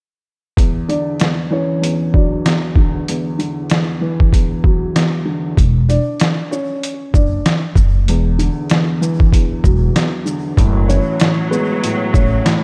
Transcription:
0.57 upright piano E2, kick, closed hi-hat
0.88 upright piano D3 D4 D5, closed hi-hat
1.20 upright piano E2, snare, closed hi-hat
1.50 upright piano E3 C#4 C#5
1.81 upright piano E2, closed hi-hat
2.13 upright piano F#3 D4 D5, kick
2.45 upright piano E2, snare, closed hi-hat
2.76 upright piano D3, kick
3.08 upright piano E2, closed hi-hat
3.39 upright piano D3, closed hi-hat
3.70 upright piano E2, snare, closed hi-hat
4.01 upright piano E3
4.20 kick
4.32 upright piano E2, kick, closed hi-hat
4.64 upright piano F#3, kick
4.95 upright piano E2, snare, closed hi-hat
5.25 upright piano D3
5.57 upright bass E1, kick, closed hi-hat
5.89 upright piano D4 D5, closed hi-hat, shaker
6.20 snare, closed hi-hat
6.51 upright piano C#4 C#5, shaker
6.83 closed hi-hat
7.14 upright bass F#1, upright piano D4 D5, kick, shaker
7.46 snare, closed hi-hat
7.75 upright bass F#1, kick, shaker
8.08 upright bass E1, upright piano E2, closed hi-hat
8.39 upright piano D3, closed hi-hat, shaker
8.70 upright piano E2, snare, closed hi-hat
9.01 upright piano E3, shaker
9.20 kick
9.32 upright piano E2, kick, closed hi-hat
9.64 upright bass E1, upright piano F#3, kick, shaker
9.95 upright piano E2, snare, closed hi-hat
10.25 upright piano D3, shaker
10.56 upright bass F#1, upright piano A2, string section F#3, kick, closed hi-hat
10.88 upright piano E3 C#4 C#5, closed hi-hat, shaker
11.20 upright piano A2, snare, closed hi-hat
11.51 upright piano G#3 B3 B4, shaker
11.83 upright piano A2, closed hi-hat
12.14 upright bass A1, upright piano A3 C#4 C#5, kick, shaker
12.45 upright piano A2, snare, closed hi-hat

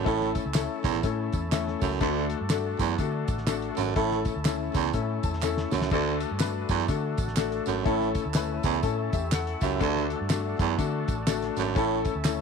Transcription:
Already playing: tonewheel organ A3 A4
0.05 fingered electric bass A1, baritone saxophone A2, upright piano A3 C#4 E4 A4, tonewheel organ C#4 E4, kick, closed hi-hat
0.21 snare
0.35 kick, closed hi-hat, tambourine
0.46 fingered electric bass C#2
0.54 upright piano A3 C#4 E4 A4, snare, clap, closed hi-hat, tambourine
0.84 fingered electric bass B1, baritone saxophone E2, kick, closed hi-hat, tambourine
0.94 fingered electric bass A1, closed hi-hat
1.03 fingered electric bass A2, upright piano A3 C#4 E4 A4, kick, closed hi-hat, tambourine
1.32 fingered electric bass E2, kick, closed hi-hat, tambourine
1.51 upright piano A3 C#4 E4 A4, snare, clap, closed hi-hat, tambourine
1.67 snare
1.81 fingered electric bass C#2, baritone saxophone F#2, kick, open hi-hat, tambourine
2.01 fingered electric bass D2, baritone saxophone D2, upright piano A3 D4 F#4 A4, tonewheel organ D4 F#4, kick, closed hi-hat, tambourine
2.30 closed hi-hat
2.41 fingered electric bass G2
2.50 upright piano A3 D4 F#4 A4, snare, clap, closed hi-hat, tambourine
2.79 baritone saxophone E2, fingered electric bass F#2, kick, closed hi-hat, tambourine
2.98 fingered electric bass D3, upright piano A3 D4 F#4 A4, kick, closed hi-hat, tambourine
3.28 fingered electric bass A1, kick, closed hi-hat, tambourine
3.38 snare
3.47 upright piano A3 D4 F#4 A4, snare, clap, closed hi-hat, tambourine
3.62 closed hi-hat
3.77 fingered electric bass G#1, baritone saxophone F#2, closed hi-hat, tambourine
3.96 fingered electric bass A1, baritone saxophone A2, upright piano A3 C#4 E4 A4, tonewheel organ C#4 E4, kick, closed hi-hat
4.11 snare
4.25 kick, closed hi-hat, tambourine
4.36 fingered electric bass D2
4.44 upright piano A3 C#4 E4 A4, snare, clap, closed hi-hat, tambourine
4.74 fingered electric bass C#2, baritone saxophone E2, kick, closed hi-hat, tambourine
4.85 closed hi-hat
4.93 fingered electric bass A2, upright piano A3 C#4 E4 A4, kick, closed hi-hat, tambourine
5.23 fingered electric bass E2, upright piano A5, kick, closed hi-hat, tambourine
5.33 snare
5.42 upright piano A3 C#4 E4 A4 E5, snare, clap, tambourine
5.57 snare
5.71 fingered electric bass C#2, baritone saxophone F#2, snare, tambourine
5.82 snare
5.91 fingered electric bass D2, baritone saxophone D2, upright piano A3 D4 F#4 A4, tonewheel organ D4 F#4, kick, crash, tambourine
6.20 closed hi-hat, tambourine
6.31 fingered electric bass G2
6.39 upright piano A3 D4 F#4 B4, snare, clap, closed hi-hat, tambourine
6.69 baritone saxophone E2, fingered electric bass F#2, kick, closed hi-hat, tambourine
6.80 closed hi-hat
6.88 fingered electric bass D3, upright piano A3 D4 F#4 A4, kick, closed hi-hat, tambourine
7.17 fingered electric bass A1, kick, closed hi-hat, tambourine
7.28 snare
7.36 upright piano A3 D4 F#4 A4, snare, clap, closed hi-hat, tambourine
7.52 closed hi-hat
7.66 fingered electric bass G#1, baritone saxophone F#2, closed hi-hat, tambourine
7.85 fingered electric bass A1, baritone saxophone A2, upright piano A3 C#4 E4 A4, tonewheel organ A3 C#4 E4, kick, closed hi-hat
8.01 snare
8.15 kick, closed hi-hat, tambourine
8.25 fingered electric bass D2
8.34 upright piano A3 C#4 E4 B4, snare, clap, closed hi-hat, tambourine
8.63 fingered electric bass C#2, baritone saxophone E2, upright piano B5, kick, closed hi-hat, tambourine
8.74 closed hi-hat
8.83 fingered electric bass A2, upright piano A3 C#4 E4 A4 A5, kick, closed hi-hat, tambourine
9.13 fingered electric bass E2, upright piano G4 E5, kick, closed hi-hat, tambourine
9.32 upright piano A4 F#5, snare, clap, closed hi-hat, tambourine
9.47 closed hi-hat
9.61 fingered electric bass C#2, baritone saxophone F#2, upright piano G4 E5, kick, closed hi-hat, tambourine
9.80 fingered electric bass D2, baritone saxophone D2, upright piano A3 D4 F#4 A4, tonewheel organ D4 F#4 A4, kick, closed hi-hat, tambourine
9.96 snare
10.10 closed hi-hat
10.21 fingered electric bass G2
10.29 upright piano A3 D4 F#4 A4, snare, clap, closed hi-hat, tambourine
10.59 baritone saxophone E2, fingered electric bass F#2, kick, closed hi-hat, tambourine
10.78 fingered electric bass D3, upright piano A3 D4 F#4 A4, kick, closed hi-hat, tambourine
11.08 fingered electric bass A1, kick, closed hi-hat, tambourine
11.27 upright piano A3 D4 F#4 A4, snare, clap, closed hi-hat, tambourine
11.42 snare, closed hi-hat
11.57 fingered electric bass G#1, baritone saxophone F#2, closed hi-hat, tambourine
11.75 fingered electric bass A1, baritone saxophone A2, upright piano A3 C#4 E4 A4, tonewheel organ C#4 E4, kick, closed hi-hat, tambourine
12.05 kick, closed hi-hat, tambourine
12.15 fingered electric bass D2
12.24 upright piano A3 C#4 E4 A4, snare, clap, closed hi-hat, tambourine

